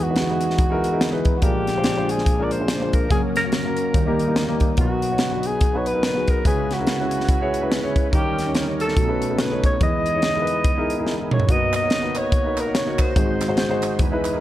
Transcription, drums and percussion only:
0.16 snare, closed hi-hat
0.41 closed hi-hat
0.50 snare
0.58 kick, closed hi-hat
0.84 closed hi-hat
1.01 snare, closed hi-hat
1.25 kick, closed hi-hat
1.42 kick, closed hi-hat
1.67 snare, closed hi-hat
1.84 snare, closed hi-hat
2.09 closed hi-hat
2.18 snare
2.26 kick, closed hi-hat
2.51 closed hi-hat
2.68 snare, closed hi-hat
2.93 kick, closed hi-hat
3.10 kick, closed hi-hat
3.36 snare, closed hi-hat
3.52 snare, closed hi-hat
3.77 closed hi-hat
3.94 kick, closed hi-hat
4.19 closed hi-hat
4.36 snare, closed hi-hat
4.60 kick, closed hi-hat
4.77 kick, closed hi-hat
5.02 closed hi-hat
5.18 snare, closed hi-hat
5.43 closed hi-hat
5.61 kick, closed hi-hat
5.86 closed hi-hat
6.03 snare, closed hi-hat
6.28 kick, closed hi-hat
6.45 kick, closed hi-hat
6.71 snare, closed hi-hat
6.87 snare, closed hi-hat
7.11 closed hi-hat
7.20 snare
7.28 kick, closed hi-hat
7.54 closed hi-hat
7.72 snare, closed hi-hat
7.96 kick, closed hi-hat
8.13 kick, closed hi-hat
8.39 snare, closed hi-hat
8.55 snare, closed hi-hat
8.80 closed hi-hat
8.88 snare
8.96 kick, closed hi-hat
9.22 closed hi-hat
9.39 snare, closed hi-hat
9.64 kick, closed hi-hat
9.81 kick, closed hi-hat
10.06 closed hi-hat
10.22 snare, closed hi-hat
10.47 closed hi-hat
10.64 kick, closed hi-hat
10.90 closed hi-hat
11.07 snare
11.31 mid tom
11.40 floor tom
11.49 kick, closed hi-hat
11.73 clap, closed hi-hat
11.90 snare, closed hi-hat
12.15 clap, closed hi-hat
12.32 kick, closed hi-hat
12.57 clap, closed hi-hat
12.75 snare, closed hi-hat
12.99 kick, clap, closed hi-hat
13.16 kick, closed hi-hat
13.41 snare, clap, closed hi-hat
13.57 snare, closed hi-hat
13.82 clap, closed hi-hat
13.99 kick, closed hi-hat
14.24 clap, closed hi-hat

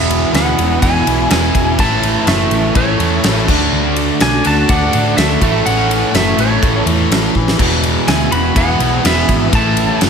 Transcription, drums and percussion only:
0.11 ride
0.34 snare, ride
0.59 ride
0.82 kick, ride
1.07 ride
1.30 snare, ride
1.55 kick, ride
1.79 kick, ride
2.03 ride
2.27 snare, ride
2.51 ride
2.75 kick, ride
3.00 ride
3.24 snare, ride
3.48 kick, crash
3.96 ride
4.20 snare, ride
4.45 ride
4.69 kick, ride
4.93 ride
5.18 snare, ride
5.42 kick, ride
5.66 ride
5.91 ride
6.15 snare, ride
6.38 ride
6.63 kick, ride
6.87 ride
7.12 snare, ride
7.35 kick
7.48 snare
7.59 kick, crash
7.83 ride
8.08 snare, ride
8.32 ride
8.56 kick, ride
8.80 ride
9.05 snare, ride
9.29 kick, ride
9.53 kick, ride
9.77 ride
10.01 snare, ride

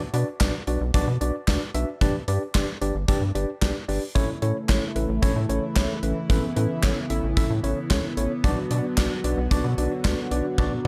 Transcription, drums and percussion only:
0.14 closed hi-hat
0.41 kick, snare, clap, closed hi-hat
0.67 closed hi-hat
0.94 kick, closed hi-hat
1.21 closed hi-hat
1.48 kick, snare, clap, closed hi-hat
1.75 closed hi-hat
2.01 kick, closed hi-hat
2.28 closed hi-hat
2.55 kick, snare, clap, closed hi-hat
2.82 closed hi-hat
3.08 kick, closed hi-hat
3.35 closed hi-hat
3.62 kick, snare, clap, closed hi-hat
3.89 open hi-hat
4.16 kick, closed hi-hat
4.42 closed hi-hat
4.69 kick, snare, clap, closed hi-hat
4.96 closed hi-hat
5.22 kick, closed hi-hat
5.50 closed hi-hat
5.76 kick, snare, clap, closed hi-hat
6.03 closed hi-hat
6.30 kick, closed hi-hat
6.56 closed hi-hat
6.83 kick, snare, clap, closed hi-hat
7.10 closed hi-hat
7.37 kick, closed hi-hat
7.64 closed hi-hat
7.91 kick, snare, clap, closed hi-hat
8.17 closed hi-hat
8.44 kick, closed hi-hat
8.71 closed hi-hat
8.98 kick, snare, clap, closed hi-hat
9.24 closed hi-hat
9.51 kick, closed hi-hat
9.78 closed hi-hat
10.05 kick, snare, clap, closed hi-hat
10.31 closed hi-hat
10.58 kick, high tom

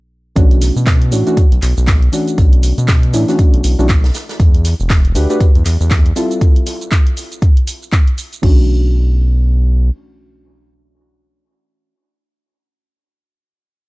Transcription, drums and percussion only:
0.36 kick, closed hi-hat, shaker
0.51 closed hi-hat
0.61 snare, closed hi-hat, open hi-hat, shaker
0.77 shaker
0.87 kick, snare, clap, closed hi-hat, shaker
1.02 closed hi-hat
1.12 closed hi-hat, open hi-hat, shaker
1.27 closed hi-hat, shaker
1.37 kick, closed hi-hat, shaker
1.52 closed hi-hat
1.62 clap, closed hi-hat, open hi-hat, shaker
1.77 shaker
1.87 kick, snare, clap, closed hi-hat, shaker
2.02 closed hi-hat
2.13 closed hi-hat, open hi-hat, shaker
2.28 closed hi-hat, shaker
2.38 kick, closed hi-hat, shaker
2.53 closed hi-hat
2.63 closed hi-hat, open hi-hat, shaker
2.78 closed hi-hat, shaker
2.88 kick, snare, clap, closed hi-hat, shaker
3.03 closed hi-hat
3.14 closed hi-hat, open hi-hat, shaker
3.28 snare, closed hi-hat, shaker
3.39 kick, closed hi-hat, shaker
3.54 closed hi-hat
3.64 closed hi-hat, open hi-hat, shaker
3.79 shaker
3.89 kick, snare, clap, closed hi-hat, shaker
4.04 snare, closed hi-hat
4.14 snare, closed hi-hat, open hi-hat, shaker
4.29 snare, closed hi-hat, shaker
4.40 kick, closed hi-hat, shaker
4.54 closed hi-hat
4.65 snare, closed hi-hat, open hi-hat, shaker
4.80 shaker
4.90 kick, snare, clap, closed hi-hat, shaker
5.05 closed hi-hat
5.15 closed hi-hat, open hi-hat, shaker
5.30 closed hi-hat, shaker
5.40 kick, closed hi-hat, shaker
5.55 closed hi-hat
5.65 clap, closed hi-hat, open hi-hat, shaker
5.81 shaker
5.90 kick, snare, clap, closed hi-hat, shaker
6.06 closed hi-hat
6.16 closed hi-hat, open hi-hat, shaker
6.31 closed hi-hat, shaker
6.41 kick, closed hi-hat, shaker
6.56 closed hi-hat
6.67 open hi-hat, shaker
6.81 closed hi-hat, shaker
6.92 kick, clap, closed hi-hat, shaker
7.07 closed hi-hat
7.17 open hi-hat, shaker
7.32 closed hi-hat, shaker
7.42 kick, closed hi-hat, shaker
7.57 closed hi-hat
7.67 open hi-hat, shaker
7.82 shaker
7.92 kick, clap, closed hi-hat, shaker
8.07 closed hi-hat
8.18 open hi-hat, shaker
8.33 closed hi-hat, shaker
8.43 kick, crash

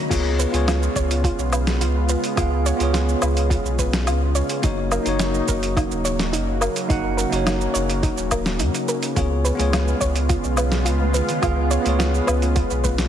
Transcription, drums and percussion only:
0.11 kick, closed hi-hat, crash, shaker
0.40 shaker
0.54 closed hi-hat, shaker
0.68 snare, closed hi-hat, low woodblock, shaker
0.83 shaker
0.96 kick, shaker
1.11 closed hi-hat, shaker
1.24 kick, closed hi-hat, shaker
1.39 shaker
1.53 low woodblock, shaker
1.67 snare, closed hi-hat, shaker
1.81 closed hi-hat, shaker
2.09 shaker
2.24 closed hi-hat, shaker
2.37 kick, closed hi-hat, low woodblock, shaker
2.66 shaker
2.80 closed hi-hat, shaker
2.94 snare, closed hi-hat, shaker
3.09 shaker
3.22 low woodblock, shaker
3.37 closed hi-hat, shaker
3.51 kick, closed hi-hat, shaker
3.66 shaker
3.79 kick, shaker
3.93 snare, closed hi-hat, shaker
4.07 closed hi-hat, low woodblock, shaker
4.35 shaker
4.49 closed hi-hat, shaker
4.63 kick, closed hi-hat, shaker
4.92 low woodblock, shaker
5.06 closed hi-hat, shaker
5.20 snare, closed hi-hat, shaker
5.34 shaker
5.48 kick, shaker
5.63 closed hi-hat, shaker
5.77 kick, closed hi-hat, low woodblock, shaker
5.91 shaker
6.05 shaker
6.19 snare, closed hi-hat, shaker
6.33 closed hi-hat, shaker
6.62 low woodblock, shaker
6.76 closed hi-hat, shaker
6.90 kick, closed hi-hat, shaker
7.19 shaker
7.32 closed hi-hat, shaker
7.47 snare, closed hi-hat, low woodblock, shaker
7.61 shaker
7.75 shaker
7.90 closed hi-hat, shaker
8.03 kick, closed hi-hat, shaker
8.18 shaker
8.31 kick, low woodblock, shaker
8.46 snare, closed hi-hat, shaker
8.59 closed hi-hat, shaker
8.75 closed hi-hat, shaker
8.89 shaker
9.03 closed hi-hat, shaker
9.17 kick, closed hi-hat, shaker
9.45 shaker
9.59 closed hi-hat, high conga, shaker
9.73 snare, closed hi-hat, low woodblock, shaker
9.88 shaker
10.01 kick, shaker
10.16 closed hi-hat, shaker
10.29 kick, closed hi-hat, shaker
10.44 shaker
10.57 low woodblock, shaker
10.72 snare, closed hi-hat, shaker
10.86 closed hi-hat, shaker
11.00 high conga
11.14 high conga, low conga, shaker
11.29 closed hi-hat, muted conga, low conga, shaker
11.43 kick, closed hi-hat, low woodblock, shaker
11.71 shaker
11.86 closed hi-hat, high conga, shaker
12.00 snare, closed hi-hat, shaker
12.14 shaker
12.28 low woodblock, shaker
12.42 closed hi-hat, muted conga, shaker
12.56 kick, closed hi-hat, shaker
12.71 shaker
12.84 kick, muted conga, shaker
12.98 snare, closed hi-hat, shaker

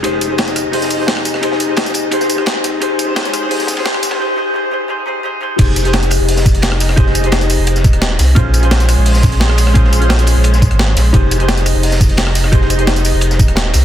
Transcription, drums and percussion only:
0.04 closed hi-hat, ride
0.21 closed hi-hat, ride, tambourine
0.38 snare, closed hi-hat, ride
0.47 snare, tambourine
0.56 cross-stick, closed hi-hat, ride, tambourine
0.73 closed hi-hat, open hi-hat
0.82 snare, tambourine
0.90 closed hi-hat, ride, tambourine
1.07 snare, closed hi-hat, ride
1.17 cross-stick
1.25 closed hi-hat, ride, tambourine
1.34 cross-stick, snare
1.43 closed hi-hat, ride
1.52 snare
1.60 closed hi-hat, ride, tambourine
1.77 snare, closed hi-hat, ride
1.86 snare, tambourine
1.94 closed hi-hat, ride, tambourine
2.11 closed hi-hat, ride
2.20 snare, tambourine
2.30 closed hi-hat, ride, tambourine
2.38 cross-stick
2.46 snare, closed hi-hat, ride
2.64 snare, closed hi-hat, ride, tambourine
2.81 closed hi-hat, ride
2.99 closed hi-hat, ride, tambourine
3.16 snare, closed hi-hat, ride
3.25 snare, tambourine
3.34 cross-stick, closed hi-hat, ride, tambourine
3.51 closed hi-hat, open hi-hat
3.60 snare, tambourine
3.67 snare, closed hi-hat, ride, tambourine
3.77 snare, ride
3.85 snare, closed hi-hat, ride
3.94 cross-stick
4.03 snare, closed hi-hat, ride, tambourine
4.11 cross-stick, snare, ride
5.59 kick, closed hi-hat, ride, crash
5.76 closed hi-hat, ride, tambourine
5.85 closed hi-hat
5.93 snare, closed hi-hat, ride
6.03 snare, closed hi-hat, tambourine
6.11 cross-stick, open hi-hat, ride, tambourine
6.29 closed hi-hat, open hi-hat
6.37 snare, tambourine
6.46 kick, closed hi-hat, ride, tambourine
6.55 closed hi-hat
6.62 snare, closed hi-hat, ride
6.72 cross-stick
6.80 open hi-hat, ride, tambourine
6.89 cross-stick, snare
6.97 kick, closed hi-hat, ride
7.07 snare
7.15 closed hi-hat, ride, tambourine
7.24 closed hi-hat
7.32 snare, closed hi-hat, ride
7.41 snare, closed hi-hat, tambourine
7.50 open hi-hat, ride, tambourine
7.67 closed hi-hat, ride
7.76 snare, tambourine
7.84 kick, closed hi-hat, ride, tambourine
7.93 cross-stick, closed hi-hat
8.01 snare, closed hi-hat, ride
8.19 snare, open hi-hat, ride, tambourine
8.36 kick, closed hi-hat, ride
8.54 closed hi-hat, ride, tambourine
8.63 closed hi-hat
8.71 snare, closed hi-hat, ride
8.80 snare, closed hi-hat, tambourine
8.89 cross-stick, open hi-hat, ride, tambourine
9.06 closed hi-hat, open hi-hat
9.15 snare, tambourine
9.23 kick, closed hi-hat, ride, tambourine
9.32 closed hi-hat
9.40 snare, closed hi-hat, ride
9.50 cross-stick
9.58 open hi-hat, ride, tambourine
9.67 cross-stick, snare
9.75 kick, closed hi-hat, ride
9.84 snare
9.93 closed hi-hat, ride, tambourine
10.02 closed hi-hat
10.09 snare, closed hi-hat, ride
10.18 snare, closed hi-hat, tambourine
10.27 open hi-hat, ride, tambourine
10.44 closed hi-hat, ride
10.54 snare, tambourine
10.62 kick, closed hi-hat, ride, tambourine
10.71 cross-stick, closed hi-hat
10.79 snare, closed hi-hat, ride
10.96 snare, open hi-hat, ride, tambourine
11.14 kick, closed hi-hat, ride
11.31 closed hi-hat, ride, tambourine
11.40 closed hi-hat
11.48 snare, closed hi-hat, ride
11.57 snare, closed hi-hat, tambourine
11.66 cross-stick, open hi-hat, ride, tambourine
11.83 closed hi-hat, open hi-hat
11.92 snare, tambourine
12.01 kick, closed hi-hat, ride, tambourine
12.09 closed hi-hat
12.17 snare, closed hi-hat, ride
12.27 cross-stick
12.35 open hi-hat, ride, tambourine
12.44 cross-stick, snare
12.53 kick, closed hi-hat, ride
12.61 snare
12.70 closed hi-hat, ride, tambourine
12.79 closed hi-hat
12.87 snare, closed hi-hat, ride
12.96 snare, closed hi-hat, tambourine
13.05 open hi-hat, ride, tambourine
13.21 closed hi-hat, ride
13.31 snare, tambourine
13.39 kick, closed hi-hat, ride, tambourine
13.48 cross-stick, closed hi-hat
13.56 snare, closed hi-hat, ride
13.73 snare, open hi-hat, ride, tambourine

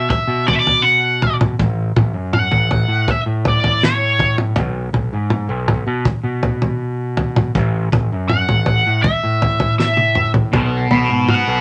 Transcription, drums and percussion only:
0.10 kick, floor tom
0.48 floor tom
0.67 floor tom
1.22 floor tom
1.41 floor tom, mid tom
1.59 kick, floor tom
1.96 kick, floor tom, mid tom
2.33 mid tom
2.52 floor tom
2.71 floor tom
3.08 kick, floor tom
3.45 floor tom
3.64 floor tom
3.83 snare
4.19 kick, floor tom
4.38 mid tom
4.56 kick, floor tom
4.94 floor tom
5.30 mid tom
5.68 floor tom, mid tom
6.05 kick, floor tom
6.43 floor tom
6.62 floor tom
7.17 floor tom
7.36 floor tom, mid tom
7.55 kick, floor tom
7.92 kick, floor tom, mid tom
8.30 mid tom
8.49 floor tom
8.66 floor tom
9.04 kick, floor tom
9.42 floor tom
9.60 floor tom
9.80 snare
9.97 high tom
10.15 mid tom
10.34 floor tom
10.53 kick, floor tom
10.91 floor tom
11.29 mid tom

